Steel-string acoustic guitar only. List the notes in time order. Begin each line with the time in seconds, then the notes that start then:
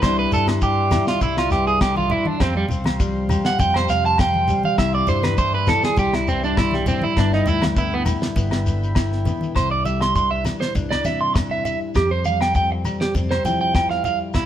0.03 C3 E3 G3 D4 E4
0.34 D4
0.62 E3 G3
0.93 E4
1.22 G3
1.52 G2
1.80 D3
2.10 E3
2.40 G4, muted steel-string acoustic guitar stroke
2.71 C4
3.00 F3 G3
3.29 G4
3.59 G3
3.89 C3
4.20 G4
4.50 G3
4.79 C3 E4
5.09 D4
5.38 E3 G3
5.68 E4
5.99 G3
6.28 G2
6.58 B2
6.88 A2
7.17 G2 E4
7.49 D4
7.77 D3 B3
8.06 E4
8.36 B3
8.66 G2
8.95 E4
9.26 B3
9.55 C3
9.86 G3
10.16 E3 D4
10.46 G3
10.75 G2 D4
11.07 E4
11.36 E3
11.66 G3
11.94 F2
12.26 G3
12.56 F3 C4
12.86 G3
13.15 C3 C4
13.46 E4
13.76 F3
14.07 G3
14.35 muted steel-string acoustic guitar stroke